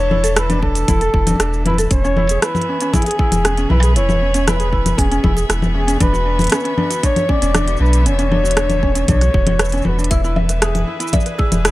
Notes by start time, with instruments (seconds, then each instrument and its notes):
Already playing: sub bass E1, string quartet E3 D4 E4 A4, flugelhorn C#5
0.11 ukulele E4, low conga
0.23 ukulele A4, closed hi-hat, cabasa
0.36 ukulele E4, flugelhorn B4, cross-stick, closed hi-hat, cabasa
0.49 ukulele D4, closed hi-hat, low conga, cabasa
0.62 ukulele D4, flugelhorn A4, kick
0.75 closed hi-hat, cabasa
0.88 sub bass E1, ukulele E4, kick, closed hi-hat, low conga, cabasa
1.01 ukulele A4, closed hi-hat, cabasa
1.14 sub bass E1, ukulele E4, kick
1.27 ukulele D4, closed hi-hat, low conga, cabasa
1.31 low conga
1.36 low conga
1.40 sub bass E1, ukulele D4, cross-stick, closed hi-hat, cabasa
1.53 cabasa
1.66 ukulele E4, flugelhorn B4, closed hi-hat, low conga
1.70 low conga
1.74 low conga
1.78 ukulele A4, closed hi-hat, low conga, cabasa
1.83 low conga
1.87 sub bass E1, kick, closed hi-hat, low conga
1.91 ukulele C#4, flugelhorn C#5, cabasa
2.04 ukulele C#4, cabasa
2.15 string quartet B3, ukulele E4, low conga
2.24 string quartet E5
2.29 ukulele G#4, closed hi-hat, cabasa
2.42 ukulele E4, flugelhorn B4, cross-stick, closed hi-hat, cabasa
2.46 string quartet G#4
2.55 low conga, cabasa
2.62 closed hi-hat
2.69 ukulele C#4
2.81 ukulele C#4, closed hi-hat, cabasa
2.93 ukulele E4, flugelhorn G#4, kick, closed hi-hat, low conga, cabasa
3.02 closed hi-hat
3.06 ukulele G#4, closed hi-hat, cabasa
3.11 closed hi-hat
3.19 ukulele E4, kick
3.31 sub bass E1, closed hi-hat, low conga, cabasa
3.45 ukulele C#4, cross-stick, closed hi-hat, cabasa
3.57 ukulele C#4, closed hi-hat, cabasa
3.70 sub bass B1, ukulele E4, flugelhorn B4, low conga
3.83 ukulele G#4, closed hi-hat, cabasa
3.96 sub bass E1, ukulele E4, flugelhorn C#5, closed hi-hat, cabasa
4.09 low conga, cabasa
4.22 ukulele C#4
4.34 ukulele C#4, closed hi-hat, cabasa
4.47 ukulele E4, flugelhorn B4, cross-stick, closed hi-hat, low conga, cabasa
4.60 ukulele G#4, closed hi-hat, cabasa
4.73 ukulele E4, kick
4.86 closed hi-hat, low conga, cabasa
4.98 sub bass E1, ukulele C#4, flugelhorn G#4, kick, closed hi-hat, cabasa
5.11 ukulele C#4, closed hi-hat, cabasa
5.24 sub bass E1, ukulele E4, kick, low conga
5.36 ukulele G#4, closed hi-hat, cabasa
5.49 sub bass E1, ukulele E4, cross-stick, closed hi-hat, cabasa
5.62 low conga, cabasa
5.75 ukulele C#4, flugelhorn G#4
5.87 ukulele C#4, closed hi-hat, cabasa
6.00 sub bass E1, string quartet E3, ukulele D4, flugelhorn B4, kick, closed hi-hat, low conga, cabasa
6.13 ukulele F#4, cabasa
6.24 string quartet D3, ukulele D4
6.39 closed hi-hat, low conga, cabasa
6.42 closed hi-hat
6.44 closed hi-hat
6.47 closed hi-hat
6.50 ukulele C#4, cross-stick, closed hi-hat
6.52 flugelhorn B4, closed hi-hat, cabasa
6.60 cabasa
6.64 ukulele C#4, closed hi-hat
6.77 ukulele D4, low conga
6.90 ukulele F#4, closed hi-hat, cabasa
7.03 ukulele D4, flugelhorn C#5, kick, closed hi-hat, cabasa
7.16 closed hi-hat, low conga, cabasa
7.29 ukulele C#4, flugelhorn D5, kick
7.42 sub bass E1, ukulele C#4, closed hi-hat, cabasa
7.55 ukulele D4, cross-stick, closed hi-hat, low conga, cabasa
7.68 ukulele F#4, closed hi-hat, cabasa
7.77 sub bass B1, ukulele D4, cabasa
7.81 flugelhorn B4
7.86 cabasa
7.93 closed hi-hat, cabasa
8.05 sub bass E1, ukulele C#4, flugelhorn C#5, closed hi-hat, cabasa
8.18 ukulele C#4, closed hi-hat, cabasa
8.31 ukulele D4, low conga
8.44 ukulele F#4, cabasa
8.51 closed hi-hat
8.56 ukulele D4, cross-stick, closed hi-hat, cabasa
8.70 closed hi-hat, low conga, cabasa
8.83 ukulele C#4, kick
8.95 ukulele C#4, closed hi-hat, cabasa
9.08 sub bass B1, ukulele D4, flugelhorn C#5, kick, closed hi-hat, low conga, cabasa
9.21 ukulele F#4, cross-stick, closed hi-hat, cabasa
9.34 sub bass E1, ukulele F#4, kick
9.47 ukulele F#4, closed hi-hat, low conga
9.59 ukulele B4, cross-stick, closed hi-hat, cabasa
9.65 cabasa
9.69 closed hi-hat, cabasa
9.73 ukulele C#4, cabasa
9.77 cabasa
9.82 ukulele F#4, flugelhorn B4, low conga, cabasa
9.86 sub bass E1
9.98 ukulele D4, cabasa
10.04 closed hi-hat
10.11 ukulele E4, kalimba E5, kick, closed hi-hat, cabasa
10.23 ukulele E4, string quartet B4, cabasa
10.34 string quartet E4, ukulele E5, low conga
10.49 ukulele B4, closed hi-hat, cabasa
10.62 ukulele G#4, cross-stick, closed hi-hat, cabasa
10.71 string quartet G#4, closed hi-hat, low conga
10.76 cabasa
10.87 ukulele E4
11.00 ukulele E4, closed hi-hat, cabasa
11.08 cabasa
11.13 kalimba D5, ukulele E5, kick, closed hi-hat, low conga, cabasa
11.20 cabasa
11.26 ukulele B4, closed hi-hat, cabasa
11.38 ukulele G#4, kalimba E6, kick
11.52 sub bass E1, closed hi-hat, low conga, cabasa
11.65 ukulele E4, cross-stick, closed hi-hat, cabasa